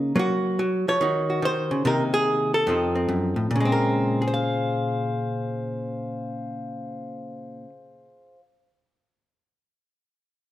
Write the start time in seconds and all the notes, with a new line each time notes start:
Already playing: C#3 A#3 D#4 A#4
0.16 F#3 A#3 F#4
0.59 F#3
0.88 F3 C#5
1.01 D#3 D#4 F#4
1.30 F#4
1.42 D#3 C5
1.71 C#3
1.85 C3 D#3 A#3 D#4 A#4
2.14 G#4
2.54 A4
2.67 F2 F3 C4 D#4
2.95 C4
3.09 F#2
3.36 A2
3.51 A#2
3.56 C#3
3.60 G#3
3.65 C4
3.72 A#4
4.22 G#4
4.28 C5
4.34 F5